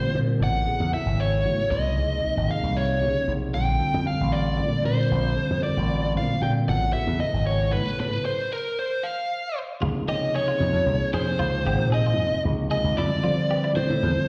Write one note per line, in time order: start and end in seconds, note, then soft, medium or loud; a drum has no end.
0.00 0.11 D3 medium
0.00 0.10 G3 medium
0.00 0.11 C4 medium
0.00 0.11 F4 medium
0.00 0.11 G4 medium
0.00 0.17 C5 medium
0.14 0.42 A#2 medium
0.14 0.40 D3 medium
0.14 0.40 G3 soft
0.14 0.40 C4 soft
0.14 0.40 F4 medium
0.14 0.40 G4 medium
0.40 0.65 A1 medium
0.40 0.63 C#3 medium
0.40 0.63 F#3 medium
0.40 0.63 B3 medium
0.40 0.63 E4 medium
0.40 0.63 A4 medium
0.40 0.91 F#5 medium
0.66 0.89 C#3 medium
0.66 0.89 F#3 medium
0.66 0.89 B3 medium
0.66 0.89 E4 medium
0.66 0.89 G#4 medium
0.66 muted slap bass stroke soft
0.80 0.92 E2 medium
0.93 1.38 C#3 medium
0.93 1.38 F#3 medium
0.93 1.38 B3 soft
0.93 1.38 E4 medium
0.93 1.38 A4 medium
0.93 1.20 E5 medium
1.06 1.46 G#1 medium
1.20 1.71 C#5 medium
1.45 1.57 A2 medium
1.45 1.67 C#3 medium
1.45 1.67 F#3 medium
1.45 1.67 B3 medium
1.45 1.67 E4 medium
1.45 1.68 F#4 medium
1.71 1.97 C2 medium
1.71 1.97 C#3 medium
1.71 1.97 F#3 medium
1.71 1.97 B3 medium
1.71 1.98 E4 medium
1.71 1.98 B4 medium
1.71 2.52 D#5 medium
1.96 2.21 C#2 medium
1.96 2.19 C3 medium
1.96 2.19 F3 soft
1.96 2.19 A#3 medium
1.96 2.19 D#4 medium
1.96 2.20 G#4 medium
2.22 2.45 C3 medium
2.22 2.45 F3 medium
2.22 2.45 A#3 soft
2.22 2.46 D#4 medium
2.22 2.46 F4 medium
2.22 muted slap bass stroke soft
2.37 2.49 G#1 medium
2.48 2.94 C3 medium
2.48 2.94 F3 medium
2.48 2.94 A#3 medium
2.48 2.94 D#4 soft
2.48 2.94 G#4 medium
2.48 2.77 F5 medium
2.63 3.04 C2 medium
2.77 3.31 C#5 medium
3.00 3.23 C3 medium
3.00 3.14 C#3 medium
3.00 3.23 F3 soft
3.00 3.24 A#3 medium
3.00 3.24 D#4 soft
3.00 3.24 G4 medium
3.26 3.55 B1 medium
3.26 3.53 C3 medium
3.26 3.53 F3 soft
3.26 3.54 A#3 soft
3.26 3.54 D#4 medium
3.26 3.54 G#4 medium
3.53 3.79 A#1 medium
3.53 3.76 D3 medium
3.53 3.76 G3 medium
3.53 3.76 C4 medium
3.53 3.76 F4 medium
3.53 3.77 A4 medium
3.53 4.07 G5 medium
3.79 4.02 D3 medium
3.79 4.02 G3 soft
3.79 4.02 C4 medium
3.79 4.02 F4 medium
3.79 4.02 A4 medium
3.94 4.06 F2 medium
4.04 4.50 D3 medium
4.04 4.50 G3 medium
4.04 4.51 C4 medium
4.04 4.51 F4 soft
4.04 4.51 A4 medium
4.04 4.34 F5 medium
4.20 4.61 A1 medium
4.32 4.85 D5 medium
4.56 4.71 A#2 medium
4.56 4.80 D3 medium
4.56 4.80 G3 medium
4.56 4.80 C4 soft
4.56 4.80 F4 soft
4.56 4.80 A4 medium
4.81 5.13 A#2 medium
4.81 5.28 D3 medium
4.81 5.28 G3 medium
4.81 5.29 C4 medium
4.81 5.29 F4 soft
4.81 5.28 C5 medium
4.86 5.63 C5 medium
5.11 5.35 A#1 medium
5.36 5.59 D3 medium
5.36 5.59 G3 medium
5.36 5.59 C4 medium
5.36 5.59 F4 medium
5.36 5.59 A4 medium
5.36 muted slap bass stroke soft
5.50 5.63 F2 medium
5.63 6.08 D3 medium
5.63 6.08 G3 medium
5.63 6.08 C4 soft
5.63 6.09 F4 medium
5.63 6.09 A#4 medium
5.63 6.12 D5 medium
5.77 6.17 A1 medium
6.15 6.28 A#2 medium
6.15 6.38 D3 medium
6.15 6.38 G3 medium
6.15 6.38 C4 medium
6.15 6.38 F4 medium
6.15 6.38 C5 medium
6.15 6.42 F5 medium
6.41 6.70 A#2 medium
6.41 6.68 D3 medium
6.41 6.68 G3 medium
6.41 6.68 C4 medium
6.41 6.68 F4 medium
6.41 6.67 A4 medium
6.41 6.50 G5 medium
6.67 6.93 A1 medium
6.67 6.90 C#3 medium
6.67 6.90 F#3 medium
6.67 6.90 B3 medium
6.67 6.90 E4 medium
6.67 6.91 A4 medium
6.67 6.93 F#5 medium
6.93 7.16 C#3 medium
6.93 7.17 F#3 medium
6.93 7.16 B3 medium
6.93 7.17 E4 medium
6.93 7.17 F#4 medium
6.93 7.18 E5 medium
6.93 muted slap bass stroke soft
7.07 7.19 E2 medium
7.18 7.64 C#3 medium
7.18 7.65 F#3 medium
7.18 7.65 B3 medium
7.18 7.65 E4 medium
7.18 7.65 A4 medium
7.18 7.46 D#5 medium
7.33 7.75 G#1 medium
7.47 7.71 C#5 medium
7.72 7.85 A2 medium
7.72 7.95 C#3 medium
7.72 7.95 F#3 soft
7.72 7.95 B3 medium
7.72 7.95 E4 medium
7.72 7.95 A4 medium
7.72 7.99 B4 medium
7.98 8.12 A2 medium
7.98 8.25 C#3 medium
7.98 8.24 F#3 soft
7.98 8.25 B3 medium
7.98 8.25 E4 medium
7.98 8.25 A4 medium
7.98 8.25 B4 medium
8.25 8.52 C5 medium
8.52 8.79 A#4 medium
8.79 9.05 C5 medium
9.03 9.58 F5 medium
9.80 9.95 C#2 medium
9.80 10.04 C3 medium
9.80 10.04 F3 medium
9.80 10.04 A#3 medium
9.80 10.04 D#4 medium
9.80 10.00 F4 medium
9.80 10.04 G#4 medium
10.08 10.31 C3 medium
10.08 10.57 C#3 medium
10.08 10.31 F3 medium
10.08 10.31 A#3 medium
10.08 10.31 D#4 medium
10.08 10.27 G4 medium
10.08 10.31 G#4 medium
10.08 10.34 D#5 medium
10.34 10.79 C3 medium
10.34 10.79 F3 medium
10.34 10.80 A#3 medium
10.34 10.80 D#4 medium
10.34 10.80 G4 medium
10.34 10.44 G#4 medium
10.34 11.10 C#5 medium
10.48 10.66 F4 medium
10.60 10.72 F2 medium
10.73 10.85 F2 medium
10.86 10.99 C2 medium
10.86 11.10 C3 medium
10.86 11.10 F3 medium
10.86 11.10 A#3 medium
10.86 11.10 D#4 medium
10.86 11.10 G#4 medium
11.00 muted slap bass stroke soft
11.13 11.38 F2 medium
11.13 11.59 C3 medium
11.13 11.59 F3 medium
11.13 11.59 A#3 medium
11.13 11.59 D#4 soft
11.13 11.32 G#4 medium
11.13 11.59 G#4 medium
11.13 11.88 C5 medium
11.39 11.64 C#2 medium
11.39 11.57 F4 medium
11.64 11.77 G#1 medium
11.64 11.88 C3 medium
11.64 11.88 F3 medium
11.64 11.88 A#3 medium
11.64 11.88 D#4 medium
11.64 11.84 G4 medium
11.64 11.88 G#4 medium
11.78 12.18 A#2 medium
11.91 12.36 C3 medium
11.91 12.36 F3 medium
11.91 12.37 A#3 medium
11.91 12.37 D#4 medium
11.91 12.37 F4 medium
11.91 12.01 G#4 medium
11.91 12.42 D#5 medium
12.06 12.24 F4 medium
12.18 12.30 F2 medium
12.32 muted slap bass stroke soft
12.44 12.69 C#2 medium
12.44 12.67 C3 medium
12.44 12.67 F3 medium
12.44 12.67 A#3 medium
12.44 12.67 D#4 medium
12.44 12.67 G#4 medium
12.71 12.97 C3 medium
12.71 12.97 F3 medium
12.71 12.97 A#3 medium
12.71 12.97 D#4 medium
12.71 12.97 F4 medium
12.71 12.89 G#4 medium
12.71 12.96 D#5 medium
12.84 12.96 C#2 medium
12.97 13.10 F2 medium
12.97 13.20 D3 medium
12.97 13.20 G3 medium
12.97 13.20 C4 medium
12.97 13.16 E4 medium
12.97 13.20 F4 medium
12.97 13.20 A4 medium
12.97 13.72 D5 medium
13.24 13.46 D3 medium
13.24 13.72 F3 medium
13.24 13.46 G3 medium
13.24 13.46 C4 medium
13.24 13.41 F4 medium
13.24 13.46 F4 medium
13.24 13.47 G4 medium
13.49 13.94 D3 medium
13.49 13.95 G3 medium
13.49 13.95 C4 medium
13.49 13.95 F4 medium
13.49 13.59 G4 medium
13.49 13.95 B4 medium
13.64 13.82 E4 medium
13.76 13.88 A2 medium
13.76 14.28 C5 medium
13.90 14.02 A2 medium
14.03 14.15 E2 medium
14.03 14.25 D3 medium
14.03 14.25 G3 medium
14.03 14.25 C4 medium
14.03 14.25 F4 medium
14.03 14.25 A4 medium
14.17 muted slap bass stroke soft